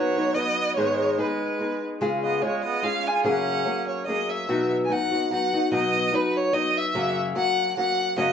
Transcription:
Already playing: nylon-string guitar F#3 B3 D#4 B4, trumpet F#3, violin C#5
0.17 nylon-string guitar B3 D#4 B4
0.34 nylon-string guitar F#3 B3 D#4 B4, trumpet B3, violin D#5
0.76 nylon-string guitar G#2 D#3 G#3 B3 D#4 G#4, trumpet G#3, violin C#5
1.18 nylon-string guitar G#3 B3 D#4 G#4, trumpet G#3, violin B4
1.59 nylon-string guitar G#3 B3 D#4 G#4
2.01 nylon-string guitar C#3 G#3 C#4 F4 G#4
2.23 trumpet B3, violin D#5
2.41 nylon-string guitar G#3 C#4 F4 G#4, trumpet G#3, violin C#5
2.64 trumpet B3, violin D#5
2.83 nylon-string guitar G#3 C#4 F4 G#4, trumpet C#4, violin F5
3.07 trumpet F4, violin G#5
3.24 nylon-string guitar F#2 C#3 F#3 A#3 C#4 G#4, trumpet C#4, violin F#5
3.65 nylon-string guitar F#3 A#3 C#4 G#4
3.88 violin C#5
4.06 nylon-string guitar F#3 A#3 C#4 G#4, violin D#5
4.30 violin E5
4.49 nylon-string guitar B2 F#3 B3 D#4 F#4
4.84 nylon-string guitar F#3, violin G#5
4.89 nylon-string guitar B3 D#4 F#4, violin F#5
5.11 nylon-string guitar B3 D#4 F#4
5.31 nylon-string guitar F#3 B3 D#4 F#4, violin F#5
5.53 nylon-string guitar B3 D#4 F#4
5.72 nylon-string guitar B2 F#3 B3 D#4 F#4, violin D#5
6.12 nylon-string guitar F#3 B3 D#4 F#4, violin B4
6.37 violin C#5
6.53 nylon-string guitar F#3 B3 D#4 F#4, violin D#5
6.77 violin E5
6.94 nylon-string guitar F#2 C#3 F#3 A#3 C#4 F#4
7.35 nylon-string guitar F#3 A#3 C#4 F#4, violin F#5
7.77 nylon-string guitar F#3 A#3 C#4 F#4, violin F#5
8.17 nylon-string guitar F#2 C#3 F#3 A#3 C#4 F#4, violin D#5

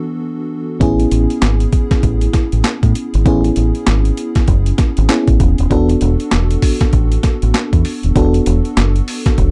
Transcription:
Already playing: fm electric piano E3 B3 D4 F#4 A4
0.80 fingered electric bass A1, fm electric piano B3 C#4 E4 G#4, kick, closed hi-hat
1.00 closed hi-hat
1.11 fingered electric bass A1, closed hi-hat
1.30 closed hi-hat
1.42 fingered electric bass G#1, snare, clap, closed hi-hat
1.60 closed hi-hat
1.72 kick, closed hi-hat
1.91 kick, snare, closed hi-hat
2.03 fingered electric bass A1, kick, closed hi-hat
2.21 closed hi-hat
2.33 kick, snare, closed hi-hat
2.52 fingered electric bass A1, closed hi-hat
2.64 snare, clap, closed hi-hat
2.83 fingered electric bass A2, kick, closed hi-hat
2.95 closed hi-hat
3.14 fingered electric bass G#1, closed hi-hat
3.25 fingered electric bass A1, fm electric piano B3 C#4 E4 G#4, kick, closed hi-hat
3.44 closed hi-hat
3.56 fingered electric bass A1, closed hi-hat
3.75 closed hi-hat
3.86 fingered electric bass G#1, snare, clap, closed hi-hat
4.05 closed hi-hat
4.17 closed hi-hat
4.35 kick, snare, closed hi-hat
4.48 fingered electric bass F#1, kick, closed hi-hat
4.66 closed hi-hat
4.78 kick, snare, closed hi-hat
4.97 fingered electric bass G#1, closed hi-hat
5.09 fm electric piano B3 C#4 E4 G#4, snare, clap, closed hi-hat
5.27 fingered electric bass A1, kick, closed hi-hat
5.40 fingered electric bass E1, kick, closed hi-hat
5.58 fingered electric bass D#1, closed hi-hat
5.70 fingered electric bass E1, fm electric piano B3 D4 F#4 A4, kick, closed hi-hat
5.89 closed hi-hat
6.01 fingered electric bass E1, closed hi-hat
6.20 closed hi-hat
6.31 fingered electric bass E1, snare, clap, closed hi-hat
6.51 closed hi-hat
6.62 kick, open hi-hat
6.81 kick, snare, closed hi-hat
6.93 fingered electric bass A1, kick, closed hi-hat
7.12 closed hi-hat
7.23 kick, snare, closed hi-hat
7.42 fingered electric bass A1, closed hi-hat
7.54 snare, clap, closed hi-hat
7.73 fingered electric bass E2, kick, closed hi-hat
7.85 open hi-hat
8.03 fingered electric bass D#1, closed hi-hat
8.15 fingered electric bass E1, fm electric piano B3 D4 F#4 A4, kick, closed hi-hat
8.34 closed hi-hat
8.46 fingered electric bass E1, closed hi-hat
8.65 closed hi-hat
8.77 fingered electric bass F#1, snare, clap, closed hi-hat
8.96 closed hi-hat
9.08 open hi-hat
9.26 kick, snare, closed hi-hat
9.38 fingered electric bass E1, kick, closed hi-hat

